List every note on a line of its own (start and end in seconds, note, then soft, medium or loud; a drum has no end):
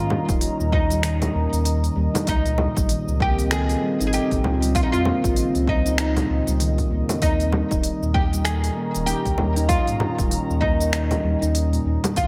0.00 0.16 G#2 medium
0.00 2.27 D#3 medium
0.00 2.27 C#4 medium
0.00 0.72 F4 medium
0.00 12.27 D#5 medium
0.00 3.80 A#5 medium
0.10 0.28 G3 medium
0.10 low conga medium
0.29 0.47 D#1 medium
0.29 0.58 D#4 loud
0.29 kick loud
0.29 open hi-hat soft
0.29 shaker medium
0.41 open hi-hat medium
0.41 shaker medium
0.60 1.27 D#2 medium
0.60 0.72 A#2 medium
0.60 shaker soft
0.72 1.01 D#4 medium
0.72 kick loud
0.90 0.98 G3 medium
0.90 open hi-hat soft
0.90 shaker medium
1.03 1.21 D#3 medium
1.03 1.92 D#4 medium
1.03 finger snap medium
1.03 open hi-hat medium
1.03 shaker medium
1.22 open hi-hat soft
1.22 low conga medium
1.22 shaker soft
1.33 1.47 D#2 medium
1.33 1.51 A#3 medium
1.53 1.89 D#2 loud
1.53 open hi-hat soft
1.53 shaker medium
1.65 1.82 D#3 medium
1.65 open hi-hat medium
1.65 shaker medium
1.84 open hi-hat soft
1.84 shaker soft
1.96 2.08 D#2 loud
1.96 2.13 G3 medium
2.14 2.27 D#4 loud
2.14 open hi-hat soft
2.14 low conga medium
2.14 shaker medium
2.27 2.67 C#2 loud
2.27 7.22 C#3 medium
2.27 3.17 D#4 medium
2.27 kick loud
2.27 open hi-hat medium
2.27 shaker medium
2.46 2.57 A#2 medium
2.46 open hi-hat soft
2.46 shaker soft
2.51 7.22 C4 medium
2.51 9.21 F4 medium
2.58 low conga medium
2.77 2.95 G#1 medium
2.77 2.84 G3 medium
2.77 kick loud
2.77 open hi-hat soft
2.77 shaker medium
2.89 3.07 D#3 medium
2.89 open hi-hat medium
2.89 shaker medium
3.08 3.75 C#2 medium
3.08 shaker soft
3.20 3.37 A#3 medium
3.20 3.52 G4 loud
3.20 kick loud
3.39 open hi-hat soft
3.39 shaker medium
3.51 3.68 D#3 medium
3.51 4.06 G#4 loud
3.51 finger snap medium
3.51 open hi-hat medium
3.51 shaker medium
3.69 open hi-hat soft
3.69 shaker soft
3.83 4.00 G3 medium
4.00 4.19 G#1 medium
4.00 4.30 D#4 loud
4.00 open hi-hat soft
4.00 shaker medium
4.07 4.13 G#4 medium
4.13 4.75 G4 loud
4.13 open hi-hat medium
4.13 shaker medium
4.31 4.39 G#1 medium
4.31 4.43 A#2 medium
4.31 kick medium
4.31 open hi-hat soft
4.31 shaker soft
4.44 4.83 C#2 medium
4.44 low conga medium
4.62 4.69 G3 medium
4.62 open hi-hat soft
4.62 shaker medium
4.75 4.92 D#3 medium
4.75 4.82 F4 loud
4.75 kick loud
4.75 open hi-hat medium
4.75 shaker medium
4.83 4.91 D#4 medium
4.92 5.12 F2 medium
4.92 5.68 F4 medium
4.92 open hi-hat soft
4.92 shaker soft
5.05 5.23 A#3 medium
5.05 low conga medium
5.24 5.42 G#1 medium
5.24 kick loud
5.24 open hi-hat soft
5.24 shaker medium
5.36 5.54 D#3 medium
5.36 open hi-hat medium
5.36 shaker medium
5.55 6.22 C#2 medium
5.55 open hi-hat soft
5.55 shaker soft
5.68 5.85 G3 medium
5.68 5.97 D#4 medium
5.68 kick loud
5.86 6.15 D#4 loud
5.86 open hi-hat soft
5.86 shaker medium
5.98 6.88 D#4 medium
5.98 finger snap medium
5.98 open hi-hat medium
5.98 shaker medium
6.16 6.28 A#2 medium
6.16 open hi-hat soft
6.16 low conga medium
6.16 shaker soft
6.29 6.41 C#2 medium
6.47 6.84 C#2 loud
6.47 6.55 G3 medium
6.47 open hi-hat soft
6.47 shaker medium
6.60 6.78 D#3 medium
6.60 open hi-hat medium
6.60 shaker medium
6.78 kick medium
6.78 open hi-hat soft
6.78 shaker soft
6.91 7.03 C#2 loud
6.91 7.08 A#3 medium
7.09 open hi-hat soft
7.09 low conga medium
7.09 shaker medium
7.22 7.61 D#2 loud
7.22 7.39 D#3 medium
7.22 12.17 D#3 medium
7.22 8.14 D#4 medium
7.22 kick loud
7.22 open hi-hat medium
7.22 shaker medium
7.40 open hi-hat soft
7.40 shaker soft
7.52 7.70 G3 medium
7.52 12.16 C#4 medium
7.52 low conga medium
7.71 7.90 D#1 medium
7.71 8.00 D#4 loud
7.71 kick loud
7.71 open hi-hat soft
7.71 shaker medium
7.83 open hi-hat medium
7.83 shaker medium
8.01 8.70 D#2 medium
8.01 8.14 A#2 medium
8.01 12.27 A#5 medium
8.01 shaker soft
8.14 8.23 G4 loud
8.14 kick loud
8.33 8.40 G3 medium
8.33 open hi-hat soft
8.33 shaker medium
8.45 8.63 D#3 medium
8.45 9.06 G#4 loud
8.45 finger snap medium
8.45 open hi-hat medium
8.45 shaker medium
8.64 open hi-hat soft
8.64 shaker soft
8.77 8.94 A#3 medium
8.94 9.14 D#1 medium
8.94 open hi-hat soft
8.94 shaker medium
9.06 9.25 D#3 medium
9.06 9.68 G4 loud
9.06 open hi-hat medium
9.06 shaker medium
9.26 9.34 C#2 loud
9.26 kick medium
9.26 open hi-hat soft
9.26 shaker soft
9.38 9.78 D#2 medium
9.38 9.56 G3 medium
9.38 low conga medium
9.56 9.86 D#4 loud
9.56 open hi-hat soft
9.56 shaker medium
9.69 10.60 F4 loud
9.69 kick loud
9.69 open hi-hat medium
9.69 shaker medium
9.87 10.06 G#2 medium
9.87 10.00 A#2 medium
9.87 open hi-hat soft
9.87 shaker soft
10.00 low conga medium
10.18 10.37 D#1 medium
10.18 10.26 G3 medium
10.18 kick loud
10.18 open hi-hat soft
10.18 shaker medium
10.31 10.48 D#3 medium
10.31 open hi-hat medium
10.31 shaker medium
10.50 11.17 D#2 medium
10.50 shaker soft
10.61 10.79 A#3 medium
10.61 10.91 D#4 medium
10.61 kick loud
10.80 open hi-hat soft
10.80 shaker medium
10.93 11.10 D#3 medium
10.93 11.82 D#4 medium
10.93 finger snap medium
10.93 open hi-hat medium
10.93 shaker medium
11.11 open hi-hat soft
11.11 low conga medium
11.11 shaker soft
11.23 11.36 D#2 medium
11.23 11.41 G3 medium
11.41 11.79 D#2 loud
11.41 11.71 D#4 loud
11.41 open hi-hat soft
11.41 shaker medium
11.55 open hi-hat medium
11.55 shaker medium
11.72 11.85 A#2 medium
11.72 open hi-hat soft
11.72 shaker soft
11.85 11.98 D#2 loud
12.04 12.11 G3 medium
12.04 open hi-hat soft
12.04 low conga medium
12.04 shaker medium
12.16 12.27 C#2 loud
12.16 12.27 C#3 medium
12.16 12.27 D#3 medium
12.16 12.27 F4 loud
12.16 kick loud
12.16 open hi-hat medium
12.16 shaker medium